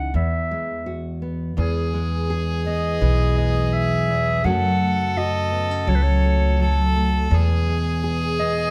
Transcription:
0.00 0.11 C#2 medium
0.00 0.10 C#3 medium
0.00 0.11 G#3 soft
0.00 0.11 D#4 medium
0.00 0.86 E4 medium
0.00 0.15 F#5 medium
0.14 1.54 E2 medium
0.14 1.56 E2 medium
0.14 1.19 E5 medium
0.51 1.54 G#3 soft
0.86 1.54 F#4 medium
1.22 2.65 B3 soft
1.57 4.09 E2 medium
1.57 2.97 E2 medium
1.57 4.42 E3 medium
1.57 4.42 G#3 soft
1.57 4.42 B3 medium
1.57 4.46 G#4 medium
1.57 4.42 G#4 medium
1.94 3.37 G#3 medium
2.30 4.41 G#4 medium
2.66 4.45 B3 medium
2.66 3.34 D#5 medium
3.01 4.41 B1 medium
3.01 4.40 E3 medium
3.38 4.41 G#3 medium
3.38 3.75 D#5 medium
3.73 4.46 E5 medium
4.10 4.44 E2 medium
4.44 5.84 F#2 medium
4.44 7.27 F#2 medium
4.44 7.29 C#3 medium
4.44 7.28 F#3 medium
4.44 5.87 F#3 medium
4.44 7.29 A3 medium
4.44 4.80 A3 medium
4.44 5.51 C#4 medium
4.44 7.29 F#4 medium
4.44 5.16 F#4 medium
4.44 6.60 A4 medium
4.44 5.19 F#5 medium
4.81 6.23 A3 soft
5.17 7.28 F#4 medium
5.17 5.90 D#5 medium
5.52 5.71 B3 medium
5.71 7.32 C#4 soft
5.87 7.27 C#2 medium
5.87 6.58 F#3 medium
5.87 5.97 C#5 medium
5.95 6.04 B4 medium
6.03 6.96 C#5 medium
6.25 6.94 A3 medium
6.59 7.27 F#3 medium
6.59 7.35 A4 medium
6.96 7.27 A3 medium
7.30 8.71 E2 medium
7.30 8.71 B2 medium
7.30 8.71 G#3 medium
7.30 8.71 B3 medium
7.30 8.71 G#4 medium
7.30 8.71 G#4 loud
7.68 8.71 G#3 medium
8.04 8.71 G#4 medium
8.39 8.71 B3 medium
8.39 8.71 D#5 medium

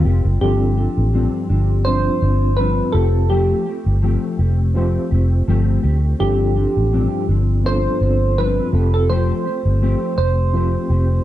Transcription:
0.00 0.38 C3 medium
0.00 0.38 G3 medium
0.00 0.41 C4 medium
0.00 0.38 F4 medium
0.00 0.43 F4 medium
0.00 0.43 G4 medium
0.00 0.43 A#4 loud
0.05 0.21 F1 loud
0.05 0.42 C4 soft
0.05 0.42 F4 soft
0.05 0.41 G4 medium
0.25 0.38 F#1 medium
0.41 0.86 G1 medium
0.41 0.78 G2 medium
0.41 0.78 F3 medium
0.41 1.31 C4 medium
0.41 0.77 C4 medium
0.41 1.32 D4 medium
0.41 0.76 D4 medium
0.41 1.32 F4 medium
0.41 1.82 G4 medium
0.41 1.32 A4 medium
0.77 1.13 F3 soft
0.77 1.14 C4 soft
0.77 1.13 D4 soft
0.97 1.26 A1 medium
1.13 1.50 G2 medium
1.13 1.50 F3 medium
1.13 1.50 C4 medium
1.13 1.48 D4 medium
1.49 2.08 G1 medium
1.49 1.85 F3 soft
1.49 1.87 C4 soft
1.49 1.86 D4 medium
1.85 2.22 G2 medium
1.85 2.22 F3 medium
1.85 2.76 C4 medium
1.85 2.22 C4 medium
1.85 2.76 D4 medium
1.85 2.21 D4 medium
1.85 2.77 F4 medium
1.85 2.60 C5 medium
1.85 2.77 C5 medium
2.22 2.80 G1 medium
2.22 2.58 F3 soft
2.22 2.59 C4 soft
2.22 2.58 D4 soft
2.57 2.94 G2 medium
2.57 2.95 F3 medium
2.57 2.94 C4 medium
2.57 2.95 D4 medium
2.57 2.91 B4 medium
2.92 3.52 F1 medium
2.92 4.11 C4 medium
2.92 3.30 C4 soft
2.92 4.11 F4 medium
2.92 3.30 G4 soft
2.92 4.11 G4 medium
2.92 3.31 A4 medium
2.92 4.12 A4 medium
2.97 3.29 A3 soft
3.30 3.66 F3 medium
3.30 3.67 A3 medium
3.30 3.67 C4 medium
3.30 3.98 G4 medium
3.30 3.65 G4 medium
3.66 4.02 A3 soft
3.66 4.02 C4 soft
3.66 4.03 G4 soft
3.86 4.15 G1 medium
4.02 4.39 F3 medium
4.02 4.39 A3 medium
4.02 4.39 C4 medium
4.02 4.38 G4 medium
4.39 4.97 F1 medium
4.39 4.75 A3 soft
4.39 4.76 C4 soft
4.39 4.75 G4 soft
4.74 5.11 F3 medium
4.74 5.12 A3 medium
4.74 5.65 C4 medium
4.74 5.11 C4 medium
4.74 5.65 F4 medium
4.74 5.65 G4 medium
4.74 5.09 G4 medium
4.74 5.66 C5 medium
5.11 5.41 F1 medium
5.11 5.47 A3 soft
5.11 5.48 C4 soft
5.11 5.47 G4 soft
5.47 5.77 G1 medium
5.47 5.84 F3 medium
5.47 5.84 A3 medium
5.47 5.83 C4 medium
5.47 5.82 G4 medium
5.83 6.13 D2 medium
5.83 6.21 A3 soft
5.83 6.20 C4 soft
5.83 6.19 G4 medium
6.19 6.65 G1 medium
6.19 6.56 G2 medium
6.19 6.56 F3 medium
6.19 7.09 C4 medium
6.19 6.56 C4 medium
6.19 7.10 D4 medium
6.19 6.55 D4 medium
6.19 7.10 F4 medium
6.19 7.24 G4 medium
6.19 7.10 A4 medium
6.56 6.92 F3 soft
6.56 6.92 C4 soft
6.56 6.92 D4 medium
6.77 7.05 A1 medium
6.92 7.28 G2 medium
6.92 7.29 F3 medium
6.92 7.29 C4 medium
6.92 7.27 D4 medium
7.29 7.86 G1 medium
7.29 7.64 F3 soft
7.29 7.66 C4 soft
7.29 7.65 D4 soft
7.64 8.01 G2 medium
7.64 8.01 F3 medium
7.64 7.71 B3 medium
7.64 8.02 C4 medium
7.64 8.54 D4 medium
7.64 8.55 F4 medium
7.64 8.55 A4 medium
7.64 8.40 C5 loud
7.68 8.57 C4 medium
7.68 8.00 D4 medium
8.01 8.59 G1 medium
8.01 8.37 F3 soft
8.01 8.38 C4 soft
8.01 8.37 D4 soft
8.37 8.73 G2 medium
8.37 8.74 F3 medium
8.37 8.74 C4 medium
8.37 8.74 D4 medium
8.37 8.95 B4 medium
8.72 9.31 F1 medium
8.72 9.89 C4 medium
8.72 9.10 C4 soft
8.72 9.89 F4 medium
8.72 9.09 G4 soft
8.72 9.90 G4 medium
8.72 9.90 A4 medium
8.76 9.09 A3 soft
8.94 9.10 A4 medium
9.09 9.45 F3 medium
9.09 9.46 A3 medium
9.09 9.46 C4 medium
9.09 9.44 G4 medium
9.09 10.14 C5 medium
9.45 9.81 A3 soft
9.45 9.82 C4 soft
9.45 9.81 G4 soft
9.65 9.94 G1 medium
9.81 10.17 F3 medium
9.81 10.18 A3 medium
9.81 10.18 C4 medium
9.81 10.17 G4 medium
10.18 10.76 F1 medium
10.18 10.54 A3 soft
10.18 10.55 C4 soft
10.18 10.54 G4 soft
10.18 11.24 C5 medium
10.53 10.90 F3 medium
10.53 10.90 A3 medium
10.53 11.24 C4 medium
10.53 10.91 C4 medium
10.53 11.24 F4 medium
10.53 11.24 G4 medium
10.53 10.89 G4 medium
10.53 11.24 C5 medium
10.90 11.19 F1 medium
10.90 11.24 A3 soft
10.90 11.24 C4 soft
10.90 11.24 G4 soft

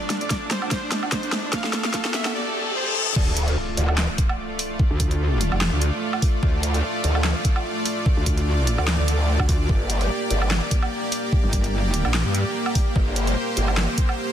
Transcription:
0.00 2.31 A3 medium
0.00 0.09 D4 medium
0.00 2.31 F4 medium
0.00 2.31 D5 medium
0.00 riser medium
0.10 0.20 D4 medium
0.10 snare medium
0.10 closed hi-hat medium
0.21 0.29 D5 medium
0.21 closed hi-hat soft
0.30 0.40 D4 medium
0.30 kick loud
0.30 snare medium
0.30 closed hi-hat medium
0.42 0.50 D4 medium
0.51 0.61 C5 medium
0.51 snare medium
0.51 closed hi-hat soft
0.62 0.70 D4 medium
0.62 low woodblock medium
0.71 0.81 C5 medium
0.71 kick medium
0.71 snare medium
0.71 closed hi-hat medium
0.82 0.91 D4 medium
0.92 1.01 D4 medium
0.92 snare medium
0.92 closed hi-hat medium
1.03 1.11 D4 medium
1.03 low woodblock medium
1.12 1.22 C5 loud
1.12 kick loud
1.12 snare medium
1.12 closed hi-hat medium
1.23 1.31 D4 medium
1.23 closed hi-hat soft
1.32 1.42 D4 medium
1.32 snare medium
1.43 1.52 D4 medium
1.53 1.63 F5 medium
1.53 kick loud
1.53 snare medium
1.53 closed hi-hat medium
1.64 1.72 A4 medium
1.64 snare medium
1.73 1.83 A4 medium
1.73 snare loud
1.73 closed hi-hat medium
1.84 1.93 F5 medium
1.84 snare medium
1.84 closed hi-hat soft
1.94 2.03 A4 medium
1.94 kick medium
1.94 snare medium
1.94 closed hi-hat medium
2.05 2.13 A4 medium
2.05 snare medium
2.14 2.24 E5 medium
2.14 snare loud
2.14 closed hi-hat soft
2.25 2.33 A4 medium
2.25 snare medium
2.25 low woodblock medium
2.34 2.44 D5 medium
2.34 reverse cymbal medium
2.46 2.54 A4 medium
2.55 2.65 A4 medium
2.66 2.74 A4 medium
2.75 2.85 C5 medium
2.86 2.95 A4 medium
2.96 3.06 A4 medium
3.07 3.15 A4 medium
3.16 3.56 D2 loud
3.16 9.65 A3 medium
3.16 9.65 F4 medium
3.16 12.92 D5 loud
3.16 kick loud
3.16 crash loud
3.16 impact medium
3.37 closed hi-hat medium
3.48 closed hi-hat soft
3.77 4.07 D2 medium
3.77 closed hi-hat medium
3.89 low woodblock medium
3.98 snare loud
3.98 clap medium
4.18 kick loud
4.18 closed hi-hat medium
4.29 low woodblock soft
4.59 open hi-hat medium
4.79 kick loud
4.91 5.50 D2 loud
5.00 kick medium
5.00 closed hi-hat medium
5.11 closed hi-hat soft
5.41 closed hi-hat medium
5.52 5.70 F1 medium
5.52 low woodblock medium
5.61 snare loud
5.61 clap medium
5.72 5.91 D2 loud
5.82 closed hi-hat medium
6.13 low woodblock medium
6.22 kick loud
6.22 open hi-hat medium
6.43 6.82 D2 loud
6.43 kick loud
6.63 closed hi-hat medium
6.74 closed hi-hat soft
7.04 7.34 D2 medium
7.04 closed hi-hat medium
7.15 low woodblock medium
7.24 snare loud
7.24 clap medium
7.45 kick loud
7.45 closed hi-hat medium
7.56 low woodblock medium
7.86 open hi-hat medium
8.06 kick loud
8.17 8.77 D2 loud
8.26 kick medium
8.26 closed hi-hat medium
8.38 closed hi-hat soft
8.67 closed hi-hat medium
8.78 8.97 D2 loud
8.78 low woodblock medium
8.88 snare loud
8.88 clap medium
8.99 9.38 D2 loud
9.08 closed hi-hat medium
9.40 9.68 D2 loud
9.40 kick medium
9.40 low woodblock medium
9.49 kick loud
9.49 open hi-hat medium
9.69 10.09 G1 loud
9.69 14.32 A#3 medium
9.69 14.32 G4 medium
9.69 kick loud
9.90 closed hi-hat medium
10.01 closed hi-hat soft
10.30 10.60 G1 loud
10.30 closed hi-hat medium
10.42 low woodblock medium
10.51 snare loud
10.51 clap medium
10.71 kick loud
10.71 closed hi-hat medium
10.82 low woodblock medium
11.12 open hi-hat loud
11.32 kick loud
11.44 12.03 G1 loud
11.53 kick medium
11.53 closed hi-hat medium
11.64 closed hi-hat soft
11.94 closed hi-hat medium
12.05 12.24 A#1 loud
12.05 low woodblock medium
12.14 snare loud
12.14 clap medium
12.25 12.44 G2 loud
12.35 closed hi-hat medium
12.66 low woodblock medium
12.75 kick loud
12.75 open hi-hat medium
12.96 13.35 G1 loud
12.96 14.32 C5 medium
12.96 kick loud
13.16 closed hi-hat medium
13.27 closed hi-hat soft
13.57 13.87 G1 medium
13.57 closed hi-hat medium
13.68 low woodblock medium
13.77 snare loud
13.77 clap medium
13.98 kick loud
13.98 closed hi-hat medium
14.09 low woodblock medium

